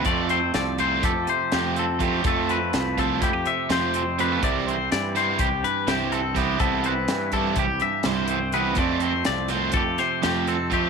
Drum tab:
HH |xxxxxxxxx|xxxxxxxxx|xxxxxxxxx|xxxxxxxxx|
SD |--o---o--|--o---o--|--oo--o-o|--o---o--|
BD |o---o---o|o--oo----|o---o---o|o--oo----|

HH |xxxxxxxxx|
SD |--oo-oo--|
BD |o---o---o|